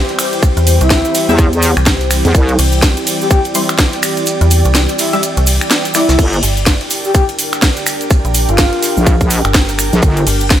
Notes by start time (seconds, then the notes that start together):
Already playing: E3 G3 C4 E4 G4 C5 G5
0.09 closed hi-hat
0.19 finger snap, open hi-hat, ride, cabasa
0.33 closed hi-hat, cabasa
0.43 kick, closed hi-hat, cabasa, shaker
0.57 E2, closed hi-hat, cabasa
0.67 open hi-hat, ride, cabasa, shaker
0.81 C2 E4, closed hi-hat, cabasa
0.90 kick, snare, closed hi-hat, cabasa, shaker
1.05 closed hi-hat, cabasa
1.14 snare, open hi-hat, ride, cabasa, shaker
1.29 E2 G3 E4 E5, cabasa
1.38 kick, closed hi-hat, cabasa, shaker
1.53 closed hi-hat, cabasa
1.62 open hi-hat, ride, cabasa, shaker
1.77 C2, finger snap, closed hi-hat, cabasa
1.86 kick, snare, closed hi-hat, cabasa, shaker
2.01 closed hi-hat
2.08 D5, finger snap, open hi-hat, ride, cabasa, shaker
2.24 E2, snare, closed hi-hat, cabasa
2.35 C2, kick, closed hi-hat, cabasa, shaker
2.48 closed hi-hat, cabasa
2.59 C2, open hi-hat, ride, cabasa
2.72 closed hi-hat, cabasa
2.82 kick, snare, closed hi-hat, cabasa, shaker
2.97 closed hi-hat, cabasa
3.07 open hi-hat, ride, cabasa, shaker
3.21 G4, cabasa
3.30 G4, kick, closed hi-hat, cabasa, shaker
3.44 closed hi-hat, cabasa
3.55 G3 E4 C5, open hi-hat, ride, cabasa, shaker
3.68 finger snap, snare, cabasa
3.78 kick, snare, closed hi-hat, cabasa, shaker
3.93 closed hi-hat
4.02 finger snap, open hi-hat, ride, cabasa, shaker
4.17 closed hi-hat, cabasa
4.26 closed hi-hat, cabasa, shaker
4.41 E2, closed hi-hat, cabasa
4.50 open hi-hat, ride, cabasa, shaker
4.65 C2, closed hi-hat, cabasa
4.74 snare, closed hi-hat, cabasa, shaker
4.89 closed hi-hat, cabasa
4.98 E4, snare, open hi-hat, ride, cabasa, shaker
5.13 G3 E4 E5, closed hi-hat, cabasa
5.23 closed hi-hat, cabasa, shaker
5.37 C2, closed hi-hat, cabasa
5.47 open hi-hat, ride, cabasa
5.61 finger snap, closed hi-hat, cabasa
5.71 snare, closed hi-hat, cabasa, shaker
5.85 closed hi-hat, cabasa
5.94 G3 E4 D5, finger snap, snare, open hi-hat, ride, cabasa, shaker
6.09 C2, snare, closed hi-hat, cabasa, shaker
6.18 G1 D3 G3 A#3 D4 G4, kick, closed hi-hat, crash, ride, cabasa, shaker
6.33 A#4, closed hi-hat, cabasa
6.37 G4
6.43 G1, open hi-hat, cabasa
6.57 G5, closed hi-hat, cabasa
6.66 kick, snare, closed hi-hat, ride, cabasa, shaker
6.81 closed hi-hat
6.90 open hi-hat, cabasa, shaker
7.04 G4, cabasa
7.14 G4, kick, closed hi-hat, ride, cabasa, shaker
7.29 closed hi-hat, cabasa
7.39 open hi-hat, cabasa, shaker
7.52 finger snap, snare, closed hi-hat, cabasa
7.62 kick, snare, closed hi-hat, ride, cabasa, shaker
7.77 closed hi-hat, cabasa
7.86 finger snap, open hi-hat, cabasa, shaker
8.01 closed hi-hat, cabasa
8.10 kick, closed hi-hat, ride, cabasa, shaker
8.25 A#1, closed hi-hat, cabasa
8.34 open hi-hat, cabasa, shaker
8.49 G1 F4, closed hi-hat, cabasa
8.58 kick, snare, closed hi-hat, ride, cabasa, shaker
8.73 closed hi-hat
8.83 snare, open hi-hat, cabasa, shaker
8.97 A#1, cabasa
9.07 kick, closed hi-hat, ride, cabasa, shaker
9.21 kick, closed hi-hat, cabasa
9.30 open hi-hat, cabasa, shaker
9.45 G1, finger snap, closed hi-hat, cabasa
9.54 kick, snare, closed hi-hat, ride, cabasa, shaker
9.69 closed hi-hat, cabasa
9.78 finger snap, open hi-hat, cabasa, shaker
9.93 A#1, snare, closed hi-hat, cabasa
10.02 G1, kick, closed hi-hat, ride, cabasa, shaker
10.17 closed hi-hat, cabasa
10.27 G1, open hi-hat, cabasa
10.41 closed hi-hat, cabasa
10.50 kick, snare, closed hi-hat, ride, cabasa, shaker